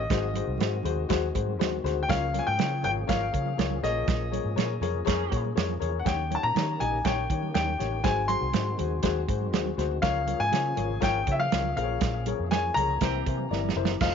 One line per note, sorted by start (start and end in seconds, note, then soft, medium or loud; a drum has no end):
0.00 2.05 D#3 medium
0.00 1.30 D#5 medium
0.10 0.40 G#1 loud
0.10 0.81 G#2 medium
0.10 2.07 G#3 medium
0.10 2.07 C4 medium
0.10 2.07 F#4 medium
0.10 0.26 F#4 loud
0.10 0.26 G#4 loud
0.10 0.26 C5 loud
0.10 kick loud
0.10 snare loud
0.10 closed hi-hat medium
0.34 0.51 F#4 medium
0.34 0.51 G#4 medium
0.34 0.52 C5 medium
0.34 closed hi-hat medium
0.34 muted conga soft
0.34 high conga medium
0.47 0.57 C2 loud
0.58 0.80 G#2 loud
0.58 0.76 F#4 medium
0.58 0.76 G#4 medium
0.58 0.76 C5 medium
0.58 snare loud
0.58 closed hi-hat medium
0.58 muted conga soft
0.58 high conga medium
0.83 1.04 D#2 loud
0.83 1.00 F#4 medium
0.83 1.01 G#4 medium
0.83 1.01 C5 loud
0.83 closed hi-hat medium
0.83 muted conga soft
0.83 high conga medium
0.83 low conga medium
0.96 low conga medium
1.08 1.30 D#2 medium
1.08 1.25 F#4 loud
1.08 1.25 G#4 loud
1.08 1.26 C5 loud
1.08 kick medium
1.08 snare loud
1.08 closed hi-hat loud
1.08 muted conga soft
1.34 1.59 G#2 medium
1.34 1.51 F#4 medium
1.34 1.51 G#4 medium
1.34 1.51 C5 medium
1.34 kick medium
1.34 closed hi-hat medium
1.34 muted conga soft
1.34 high conga soft
1.47 high conga medium
1.59 1.79 D#2 medium
1.59 1.75 F#4 medium
1.59 1.75 G#4 medium
1.59 1.75 C5 loud
1.59 snare loud
1.59 closed hi-hat medium
1.71 high conga medium
1.84 2.04 D2 loud
1.84 2.00 F#4 medium
1.84 2.00 G#4 medium
1.84 2.00 C5 loud
1.84 snare soft
1.84 closed hi-hat medium
1.84 muted conga soft
1.84 low conga medium
2.03 2.09 G5 medium
2.07 2.39 C#2 loud
2.07 2.79 C#3 medium
2.07 6.02 F3 medium
2.07 3.80 A#3 medium
2.07 8.00 C#4 medium
2.07 2.25 F4 loud
2.07 6.02 G#4 medium
2.07 2.25 A#4 medium
2.07 2.25 C#5 loud
2.07 2.41 F5 loud
2.07 kick loud
2.07 snare loud
2.07 closed hi-hat loud
2.33 2.49 F4 medium
2.33 2.50 A#4 medium
2.33 2.50 C#5 medium
2.33 closed hi-hat medium
2.33 muted conga soft
2.33 high conga medium
2.39 2.46 G#5 medium
2.47 2.57 G#2 medium
2.47 2.81 G5 loud
2.57 2.86 C#3 loud
2.57 2.74 F4 medium
2.57 2.74 A#4 medium
2.57 2.74 C#5 medium
2.57 snare loud
2.57 closed hi-hat medium
2.57 muted conga soft
2.57 high conga medium
2.82 3.04 G#1 loud
2.82 2.99 F4 medium
2.82 2.99 A#4 medium
2.82 2.99 C#5 medium
2.82 2.90 G5 loud
2.82 closed hi-hat medium
2.82 high conga medium
2.82 low conga medium
2.96 low conga medium
3.07 3.29 G#1 medium
3.07 3.24 F4 loud
3.07 3.24 A#4 medium
3.07 3.24 C#5 loud
3.07 3.79 F5 medium
3.07 kick medium
3.07 snare loud
3.07 closed hi-hat loud
3.07 muted conga soft
3.32 3.53 C#3 loud
3.32 3.49 F4 medium
3.32 3.49 A#4 medium
3.32 3.49 C#5 medium
3.32 kick medium
3.32 closed hi-hat medium
3.32 muted conga soft
3.32 high conga soft
3.46 high conga medium
3.57 3.78 C#2 medium
3.57 3.74 F4 medium
3.57 3.74 A#4 medium
3.57 3.74 C#5 medium
3.57 snare loud
3.57 closed hi-hat medium
3.70 high conga medium
3.82 4.03 A#1 loud
3.82 4.54 A#2 medium
3.82 8.01 A#3 medium
3.82 4.22 G#4 medium
3.82 4.23 A#4 medium
3.82 4.23 C#5 medium
3.82 5.28 D#5 medium
3.82 snare soft
3.82 closed hi-hat medium
3.82 muted conga soft
3.82 low conga medium
4.08 4.38 A#1 loud
4.08 kick loud
4.08 snare loud
4.08 closed hi-hat medium
4.31 4.48 G#4 medium
4.31 4.48 A#4 medium
4.31 4.48 C#5 medium
4.31 closed hi-hat medium
4.31 muted conga soft
4.31 high conga medium
4.45 4.55 G#2 medium
4.56 4.77 A#2 loud
4.56 4.72 G#4 medium
4.56 4.73 A#4 medium
4.56 4.73 C#5 loud
4.56 snare loud
4.56 closed hi-hat medium
4.56 muted conga soft
4.56 high conga medium
4.81 5.01 F2 medium
4.81 4.98 G#4 medium
4.81 4.98 A#4 medium
4.81 4.98 C#5 loud
4.81 closed hi-hat medium
4.81 high conga medium
4.81 low conga medium
4.94 low conga medium
5.05 5.27 F2 medium
5.05 5.43 F3 loud
5.05 5.43 C#4 medium
5.05 5.22 G#4 loud
5.05 5.43 G#4 loud
5.05 5.22 A#4 loud
5.05 5.22 C#5 loud
5.05 kick medium
5.05 snare loud
5.05 closed hi-hat loud
5.30 5.52 A#2 medium
5.30 5.47 G#4 medium
5.30 5.47 A#4 medium
5.30 5.47 C#5 medium
5.30 kick medium
5.30 closed hi-hat medium
5.30 high conga soft
5.45 high conga medium
5.55 5.77 F2 medium
5.55 5.72 G#4 medium
5.55 5.72 A#4 medium
5.55 5.72 C#5 loud
5.55 snare loud
5.55 closed hi-hat medium
5.69 high conga medium
5.80 6.01 E2 medium
5.80 5.96 G#4 medium
5.80 5.96 A#4 medium
5.80 5.97 C#5 loud
5.80 closed hi-hat medium
5.80 muted conga soft
5.80 low conga medium
5.99 6.06 F#5 medium
6.05 6.36 D#2 loud
6.05 6.76 D#3 medium
6.05 9.99 D#3 medium
6.05 6.21 D#4 loud
6.05 6.21 G4 medium
6.05 8.02 G4 medium
6.05 6.22 C#5 loud
6.05 6.35 G5 medium
6.05 kick loud
6.05 snare loud
6.05 closed hi-hat loud
6.30 6.46 D#4 medium
6.30 6.47 G4 medium
6.30 6.47 C#5 medium
6.30 closed hi-hat medium
6.30 muted conga soft
6.30 high conga medium
6.35 6.43 A5 medium
6.43 6.53 A#2 medium
6.43 6.82 A#5 loud
6.55 6.76 D#3 loud
6.55 6.71 D#4 medium
6.55 6.72 G4 medium
6.55 6.72 C#5 medium
6.55 snare loud
6.55 closed hi-hat medium
6.55 muted conga soft
6.55 high conga medium
6.80 7.01 A#1 medium
6.80 6.96 D#4 medium
6.80 6.97 G4 medium
6.80 6.96 D#5 medium
6.80 7.04 G#5 medium
6.80 closed hi-hat medium
6.80 muted conga soft
6.80 high conga medium
6.80 low conga medium
6.92 low conga medium
7.05 7.25 A#1 loud
7.05 7.21 D#4 loud
7.05 7.21 G4 medium
7.05 7.21 C#5 loud
7.05 7.53 G5 medium
7.05 kick medium
7.05 snare loud
7.05 closed hi-hat loud
7.30 7.50 D#3 loud
7.30 7.46 D#4 medium
7.30 7.47 G4 medium
7.30 7.47 C#5 medium
7.30 kick medium
7.30 closed hi-hat medium
7.30 muted conga soft
7.30 high conga soft
7.43 high conga medium
7.54 7.75 D#2 medium
7.54 7.71 D#4 medium
7.54 7.71 G4 medium
7.54 7.71 C#5 medium
7.54 8.01 G5 medium
7.54 snare loud
7.54 closed hi-hat medium
7.54 muted conga soft
7.65 high conga medium
7.79 8.00 A1 medium
7.79 7.95 D#4 medium
7.79 7.95 G4 medium
7.79 7.95 C#5 medium
7.79 snare soft
7.79 closed hi-hat medium
7.79 muted conga soft
7.79 low conga medium
8.03 8.34 G#1 loud
8.03 8.75 G#2 medium
8.03 10.02 G#3 medium
8.03 10.02 C4 medium
8.03 8.20 F#4 loud
8.03 10.02 F#4 medium
8.03 8.20 G#4 medium
8.03 8.20 C5 loud
8.03 8.30 G#5 medium
8.03 kick loud
8.03 snare loud
8.03 closed hi-hat loud
8.28 8.45 F#4 medium
8.28 8.45 G#4 medium
8.28 8.45 C5 medium
8.28 8.75 C6 loud
8.28 closed hi-hat medium
8.28 muted conga soft
8.28 high conga medium
8.41 8.52 C2 medium
8.53 8.74 G#2 loud
8.53 8.69 F#4 medium
8.53 8.70 G#4 medium
8.53 8.70 C5 medium
8.53 snare loud
8.53 closed hi-hat medium
8.53 muted conga soft
8.53 high conga medium
8.78 8.99 D#2 loud
8.78 8.94 F#4 medium
8.78 8.95 G#4 medium
8.78 8.95 C5 medium
8.78 closed hi-hat medium
8.78 high conga medium
8.78 low conga medium
8.90 low conga medium
9.03 9.24 D#2 loud
9.03 9.19 F#4 loud
9.03 9.20 G#4 loud
9.03 9.19 C5 loud
9.03 kick medium
9.03 snare loud
9.03 closed hi-hat medium
9.28 9.53 G#2 loud
9.28 9.44 F#4 medium
9.28 9.44 G#4 medium
9.28 9.45 C5 medium
9.28 kick medium
9.28 closed hi-hat medium
9.28 high conga soft
9.41 high conga medium
9.52 9.73 D#2 medium
9.52 9.69 F#4 medium
9.52 9.69 G#4 medium
9.52 9.69 C5 medium
9.52 snare loud
9.52 closed hi-hat medium
9.65 high conga medium
9.77 9.98 D2 medium
9.77 9.94 F#4 medium
9.77 9.94 G#4 medium
9.77 9.94 C5 loud
9.77 snare soft
9.77 closed hi-hat medium
9.77 muted conga soft
9.77 low conga medium
10.02 10.33 C#2 loud
10.02 10.74 C#3 medium
10.02 12.99 F3 medium
10.02 11.74 A#3 medium
10.02 12.99 C#4 medium
10.02 10.19 F4 loud
10.02 12.99 G#4 medium
10.02 10.19 A#4 medium
10.02 10.19 C#5 loud
10.02 10.37 F5 loud
10.02 kick loud
10.02 snare loud
10.02 closed hi-hat medium
10.26 10.43 F4 medium
10.26 10.43 A#4 medium
10.26 10.44 C#5 medium
10.26 closed hi-hat medium
10.26 high conga medium
10.40 10.50 G#2 loud
10.40 11.04 G#5 loud
10.52 10.72 C#3 loud
10.52 10.68 F4 medium
10.52 10.68 A#4 medium
10.52 10.69 C#5 medium
10.52 snare loud
10.52 closed hi-hat medium
10.52 muted conga soft
10.52 high conga medium
10.75 10.97 G#1 loud
10.75 10.92 F4 medium
10.75 10.93 A#4 medium
10.75 10.93 C#5 medium
10.75 closed hi-hat medium
10.75 muted conga soft
10.75 high conga medium
10.75 low conga medium
10.89 low conga medium
11.00 11.22 G#1 loud
11.00 11.17 F4 loud
11.00 11.18 A#4 loud
11.00 11.18 C#5 loud
11.00 11.34 G5 medium
11.00 kick medium
11.00 snare loud
11.00 closed hi-hat medium
11.00 muted conga soft
11.27 11.47 C#3 loud
11.27 11.43 F4 medium
11.27 11.43 A#4 medium
11.27 11.43 C#5 medium
11.27 kick medium
11.27 closed hi-hat medium
11.27 high conga soft
11.32 11.39 E5 medium
11.39 11.75 F5 loud
11.39 high conga medium
11.52 11.72 C#2 medium
11.52 11.68 F4 medium
11.52 11.68 A#4 medium
11.52 11.68 C#5 medium
11.52 snare loud
11.52 closed hi-hat medium
11.63 high conga medium
11.76 11.97 A#1 loud
11.76 12.48 A#2 medium
11.76 13.98 A#3 medium
11.76 12.17 G#4 medium
11.76 12.17 A#4 medium
11.76 11.83 C5 medium
11.76 12.23 F5 medium
11.76 closed hi-hat medium
11.76 muted conga soft
11.76 low conga medium
11.84 12.20 C#5 medium
12.01 12.32 A#1 loud
12.01 kick loud
12.01 snare loud
12.01 closed hi-hat loud
12.01 muted conga soft
12.26 12.43 G#4 medium
12.26 12.43 A#4 medium
12.26 12.43 C#5 medium
12.26 closed hi-hat medium
12.26 high conga medium
12.39 12.69 F2 medium
12.51 12.68 G#4 medium
12.51 12.68 A#4 medium
12.51 12.68 C#5 medium
12.51 12.75 G#5 medium
12.51 snare loud
12.51 closed hi-hat medium
12.51 muted conga soft
12.51 high conga medium
12.74 12.96 C#2 loud
12.74 12.93 G#4 medium
12.74 12.93 A#4 medium
12.74 12.93 C#5 medium
12.74 13.71 A#5 loud
12.74 closed hi-hat medium
12.74 muted conga soft
12.74 high conga medium
12.74 low conga medium
12.88 low conga medium
13.01 13.21 C2 loud
13.01 13.73 C3 medium
13.01 13.37 E3 medium
13.01 14.00 E3 medium
13.01 13.37 C4 loud
13.01 14.00 C4 medium
13.01 13.17 E4 loud
13.01 13.37 G4 loud
13.01 14.00 G4 medium
13.01 13.18 A#4 medium
13.01 13.18 C5 loud
13.01 kick medium
13.01 snare loud
13.01 closed hi-hat medium
13.26 13.46 C3 medium
13.26 13.42 E4 medium
13.26 13.42 A#4 medium
13.26 13.43 C5 medium
13.26 kick medium
13.26 closed hi-hat medium
13.26 muted conga soft
13.26 high conga soft
13.38 high conga medium
13.50 13.71 G1 medium
13.50 13.67 E4 medium
13.50 13.67 A#4 medium
13.50 13.67 D5 medium
13.50 snare medium
13.50 muted conga soft
13.64 high conga medium
13.69 snare medium
13.76 13.96 F#1 medium
13.76 13.92 E4 medium
13.76 13.92 A#4 medium
13.76 13.92 C5 loud
13.76 low conga medium
13.85 snare loud
14.00 14.15 F1 loud
14.00 14.15 D#3 medium
14.00 14.15 A3 medium
14.00 14.15 C4 medium
14.00 14.15 F4 medium
14.00 14.15 F4 loud
14.00 14.15 A4 medium
14.00 14.15 C5 medium
14.00 14.15 D#5 loud
14.00 14.15 F5 medium
14.00 kick loud
14.00 snare loud
14.00 crash loud